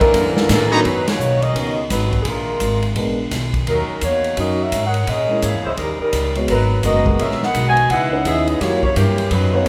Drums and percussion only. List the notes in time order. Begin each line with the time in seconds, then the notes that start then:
0.01 kick, ride
0.14 kick, ride
0.37 snare
0.49 kick, snare, hi-hat pedal, ride
0.85 kick, ride
1.08 snare, ride
1.20 hi-hat pedal
1.42 ride
1.55 kick, ride
1.90 kick, snare, hi-hat pedal, ride
2.12 kick, ride
2.25 kick, ride
2.60 kick, hi-hat pedal, ride
2.83 ride
2.96 kick, ride
3.31 kick, snare, hi-hat pedal, ride
3.54 kick, ride
3.67 kick, ride
4.01 kick, hi-hat pedal, ride
4.24 ride
4.37 kick, ride
4.72 kick, hi-hat pedal, ride
4.94 ride
5.07 kick, ride
5.42 kick, hi-hat pedal, ride
5.77 kick, ride
6.13 kick, hi-hat pedal, ride
6.35 ride
6.48 kick, ride
6.83 kick, hi-hat pedal, ride
7.06 kick
7.19 kick, ride
7.31 snare
7.43 snare
7.54 kick, hi-hat pedal, ride
7.77 ride
7.90 kick, ride
8.25 kick, hi-hat pedal, ride
8.48 ride
8.61 kick, snare, ride
8.83 kick
8.96 kick, hi-hat pedal, ride
9.18 ride
9.31 kick, ride